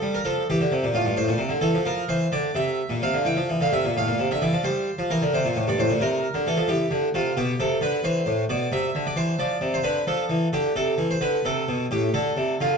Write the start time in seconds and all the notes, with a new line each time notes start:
Already playing: A4
0.02 G3
0.15 A#4
0.25 F3 A4
0.50 E3 G4
0.61 D3
0.72 C3
0.84 A#2
0.94 A2 F4
1.05 G2
1.17 A2 C5
1.28 A#2
1.38 C3
1.49 D3
1.61 E3 A4
1.74 F3
1.86 F3 A#4
2.09 E3 C5
2.32 D3 D5
2.55 C3 E5
2.90 A#2
3.02 C3 F5
3.14 D3
3.25 E3 G5
3.37 F3
3.49 E3
3.61 D3 F5
3.72 C3 E5
3.85 A#2
3.97 A2 F5
4.08 A#2
4.19 C3
4.31 D3 E5
4.42 E3 D5
4.53 F3
4.64 G3 C5
4.99 F3
5.10 E3 A#4
5.22 D3
5.34 C3 C5
5.45 A#2
5.56 A2
5.67 G2 D5
5.78 A2 C5
5.90 A#2
6.00 C3 A#4
6.34 D3
6.47 E3 A4
6.57 F3
6.68 E3 G4
6.91 D3
7.14 C3 F4
7.37 B2 G4
7.60 C3 A4
7.81 D3 B4
8.04 E3 C5
8.26 A2
8.49 B2 D5
8.72 C3 E5
8.95 D3
9.07 D5
9.16 E3 C5
9.39 F3 D5
9.61 C3
9.74 C5
9.84 D3 B4
10.07 F3 A4
10.30 E3
10.53 D3 G4
10.76 C3 A4
10.98 E3
11.11 C5
11.21 D3 B4
11.45 C3 A4
11.68 B2
11.91 A2 G4
12.14 D3 A4
12.37 C3
12.61 D3 F4